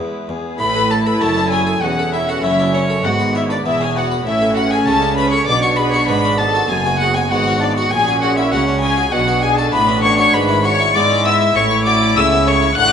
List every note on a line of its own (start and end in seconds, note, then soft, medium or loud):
0.00 0.27 E2 soft
0.00 0.29 G#3 soft
0.00 0.26 B3 soft
0.00 0.26 E4 soft
0.00 0.30 E4 soft
0.00 0.26 G#4 soft
0.00 0.30 B4 soft
0.29 0.37 E2 soft
0.29 0.57 E2 soft
0.29 0.61 B3 soft
0.29 0.61 G#4 medium
0.29 0.61 G#4 soft
0.59 1.18 A1 medium
0.59 1.17 A2 medium
0.59 1.18 A2 soft
0.59 1.79 E4 medium
0.59 0.89 B4 loud
0.59 0.92 B5 loud
0.59 0.89 B5 loud
0.76 0.92 A4 medium
0.91 1.07 A4 medium
0.91 1.06 B4 soft
0.91 1.08 A5 medium
0.91 1.07 A5 medium
1.06 1.23 A4 medium
1.06 1.22 B4 medium
1.06 1.23 B5 medium
1.21 1.82 F#1 medium
1.21 1.79 F#2 soft
1.21 1.82 F#2 medium
1.21 1.38 C#4 soft
1.21 1.52 A4 medium
1.21 1.52 A5 medium
1.21 1.53 A5 loud
1.37 1.53 D4 soft
1.52 1.68 C#4 soft
1.52 1.83 G#4 medium
1.52 1.82 G#5 medium
1.52 1.83 G#5 medium
1.67 1.83 A4 soft
1.81 2.43 E1 medium
1.81 2.43 E2 medium
1.81 2.40 E2 medium
1.81 3.05 C#4 medium
1.81 1.91 F#4 medium
1.81 2.13 F#5 medium
1.81 2.14 F#5 medium
1.99 2.15 A4 medium
2.13 2.28 E4 medium
2.13 2.29 B4 soft
2.13 2.29 E5 medium
2.13 2.30 E5 medium
2.28 2.44 F#4 medium
2.28 2.45 A4 soft
2.28 2.45 F#5 medium
2.28 2.44 F#5 medium
2.42 3.04 F#1 medium
2.42 3.03 F#2 medium
2.42 3.01 F#2 medium
2.42 2.60 C#4 medium
2.42 2.74 E4 medium
2.42 2.73 E5 medium
2.42 2.76 E5 medium
2.60 2.75 D4 soft
2.74 3.05 C#4 medium
2.74 2.91 C#4 soft
2.74 2.82 C#5 medium
2.74 3.07 C#5 medium
2.90 3.05 A4 medium
3.04 3.66 G#1 medium
3.04 3.66 G#2 medium
3.04 3.62 G#2 medium
3.04 3.65 B3 medium
3.04 3.35 F#4 medium
3.04 3.12 F#5 medium
3.04 3.36 F#5 medium
3.20 3.36 B4 medium
3.35 3.51 E4 medium
3.35 3.51 C#5 soft
3.35 3.41 E5 medium
3.35 3.42 E5 medium
3.50 3.66 D4 medium
3.50 3.67 B4 medium
3.50 3.66 D5 medium
3.50 3.57 D5 medium
3.66 4.26 E1 medium
3.66 4.23 E2 medium
3.66 4.26 E2 medium
3.66 3.82 B3 soft
3.66 4.26 B3 medium
3.66 3.81 E4 medium
3.66 3.81 E5 loud
3.66 3.84 E5 medium
3.81 3.96 C#4 soft
3.81 3.87 G#4 medium
3.81 3.96 G#5 medium
3.81 3.97 G#5 medium
3.95 4.12 B3 soft
3.95 4.25 F#4 medium
3.95 4.27 F#5 medium
3.95 4.05 F#5 medium
4.12 4.27 B4 soft
4.25 4.87 A1 medium
4.25 4.86 A2 medium
4.25 4.84 A2 medium
4.25 5.46 C#4 medium
4.25 4.56 E4 medium
4.25 4.56 E5 medium
4.42 4.58 A4 medium
4.55 4.71 F#4 medium
4.55 4.72 B4 medium
4.55 4.72 F#5 loud
4.55 4.72 F#5 medium
4.70 4.86 G#4 medium
4.70 4.88 A4 medium
4.70 4.87 G#5 medium
4.86 5.47 C#2 medium
4.86 5.47 C#3 medium
4.86 5.44 C#3 medium
4.86 5.03 C#4 medium
4.86 5.17 A4 medium
4.86 5.17 A5 medium
4.86 5.17 A5 loud
5.02 5.18 D4 medium
5.16 5.34 C#4 soft
5.16 5.32 B4 medium
5.16 5.32 B5 medium
5.16 5.31 B5 medium
5.31 5.48 A4 medium
5.31 5.48 C#5 medium
5.31 5.46 C#6 medium
5.31 5.49 C#6 medium
5.46 6.08 B1 medium
5.46 6.08 B2 medium
5.46 6.06 B2 medium
5.46 6.70 D4 medium
5.46 5.63 D5 medium
5.46 5.62 D6 loud
5.46 5.55 D6 loud
5.63 5.79 F#4 medium
5.63 5.79 C#5 medium
5.63 5.69 C#6 medium
5.63 5.79 C#6 loud
5.76 5.94 G#4 soft
5.76 5.94 B4 medium
5.76 5.83 B5 medium
5.76 5.94 B5 loud
5.92 6.10 F#4 medium
5.92 6.09 C#5 medium
5.92 6.07 C#6 medium
5.92 6.10 C#6 medium
6.07 6.70 G#1 medium
6.07 6.66 G#2 medium
6.07 6.70 G#2 medium
6.07 6.25 B3 soft
6.07 6.39 B4 medium
6.07 6.40 B5 loud
6.24 6.40 C#4 soft
6.38 6.56 B3 medium
6.38 6.69 A4 medium
6.38 6.70 A5 medium
6.38 6.70 A5 loud
6.55 6.71 F#4 medium
6.69 7.30 F#1 medium
6.69 7.29 F#2 medium
6.69 7.27 F#2 medium
6.69 7.91 B3 medium
6.69 7.00 G#4 medium
6.69 6.99 G#5 medium
6.69 7.00 G#5 loud
6.86 7.02 F#4 medium
6.99 7.15 F#4 medium
6.99 7.16 G#4 soft
6.99 7.16 F#5 medium
7.15 7.32 F#4 medium
7.15 7.21 G#4 medium
7.15 7.32 G#5 medium
7.15 7.31 G#5 loud
7.30 7.92 G#1 medium
7.30 7.91 G#2 medium
7.30 7.88 G#2 medium
7.30 7.47 B3 medium
7.30 7.61 F#4 medium
7.30 7.60 F#5 loud
7.30 7.62 F#5 medium
7.48 7.62 C#4 soft
7.61 7.78 B3 soft
7.61 7.76 D4 medium
7.61 7.76 D5 medium
7.76 7.91 F#4 medium
7.76 7.92 F#4 medium
7.76 7.93 F#5 medium
7.76 7.91 F#5 medium
7.91 8.51 A#1 medium
7.91 8.50 A#2 medium
7.91 8.49 A#2 medium
7.91 9.13 C#4 medium
7.91 8.22 G#4 loud
7.91 8.21 G#5 loud
8.08 8.23 F#4 medium
8.22 8.37 F#4 medium
8.22 8.38 G#4 medium
8.22 8.37 F#5 medium
8.36 8.52 E4 medium
8.36 8.53 F#4 medium
8.36 8.53 E5 medium
8.36 8.52 E5 medium
8.51 9.13 C#2 medium
8.51 9.13 C#3 medium
8.51 9.09 C#3 medium
8.51 8.68 C#4 medium
8.51 8.61 F#4 medium
8.51 8.80 F#5 medium
8.51 8.61 F#5 loud
8.68 8.83 D4 soft
8.81 8.98 C#4 soft
8.81 9.12 G#4 medium
8.81 9.13 G#5 medium
8.81 9.12 G#5 loud
8.98 9.13 F#4 medium
9.12 9.73 B1 medium
9.12 9.69 B2 medium
9.12 9.72 B2 medium
9.12 10.95 D4 medium
9.12 9.42 F#4 medium
9.12 9.44 F#5 medium
9.12 9.42 F#5 loud
9.28 9.44 F#4 medium
9.42 9.57 G#4 medium
9.42 9.58 G#4 soft
9.42 9.57 G#5 loud
9.42 9.58 G#5 medium
9.57 9.74 F#4 medium
9.57 9.73 A4 medium
9.57 9.73 A5 loud
9.57 9.64 A5 medium
9.72 10.34 A1 medium
9.72 10.30 A2 medium
9.72 10.33 A2 medium
9.72 9.89 B3 medium
9.72 10.03 B4 medium
9.72 10.03 B5 loud
9.72 10.03 B5 medium
9.88 10.04 C#4 medium
10.03 10.19 B3 soft
10.03 10.18 C#5 medium
10.03 10.16 C#6 loud
10.03 10.18 C#6 loud
10.18 10.34 F#4 medium
10.18 10.34 C#5 medium
10.18 10.33 C#6 loud
10.18 10.35 C#6 loud
10.33 10.95 G#1 medium
10.33 10.91 G#2 medium
10.33 10.94 G#2 medium
10.33 10.65 B4 medium
10.33 10.64 B5 loud
10.33 10.67 B5 medium
10.49 10.65 E4 medium
10.63 10.80 F#4 medium
10.63 10.94 C#5 loud
10.63 10.94 C#6 loud
10.63 10.96 C#6 medium
10.80 10.96 E4 medium
10.95 11.55 G#2 medium
10.95 11.55 G#3 medium
10.95 11.52 G#3 medium
10.95 11.11 B3 medium
10.95 12.74 E4 medium
10.95 11.25 D5 loud
10.95 11.27 D6 loud
10.95 11.26 D6 loud
11.10 11.25 C#4 soft
11.25 11.41 B3 medium
11.25 11.56 E5 loud
11.25 11.55 E6 medium
11.25 11.34 E6 loud
11.41 11.56 E4 medium
11.55 12.16 A1 medium
11.55 12.12 A2 medium
11.55 12.16 A2 medium
11.55 11.86 C#5 medium
11.55 11.64 C#6 loud
11.55 11.86 C#6 loud
11.71 11.87 E4 medium
11.85 12.02 F#4 medium
11.85 12.16 D5 medium
11.85 12.18 D6 medium
11.85 12.16 D6 loud
12.02 12.18 E4 medium
12.16 12.78 C#2 medium
12.16 12.77 C#3 medium
12.16 12.74 C#3 medium
12.16 12.33 A3 medium
12.16 12.47 E5 loud
12.16 12.24 E6 loud
12.16 12.49 E6 loud
12.32 12.47 B3 medium
12.46 12.63 A3 medium
12.46 12.77 C#5 medium
12.46 12.76 C#6 loud
12.46 12.76 C#6 medium
12.62 12.78 E4 medium
12.76 12.92 A1 medium
12.76 12.92 A2 medium
12.76 12.92 D4 medium
12.76 12.92 F#5 loud
12.76 12.92 F#6 loud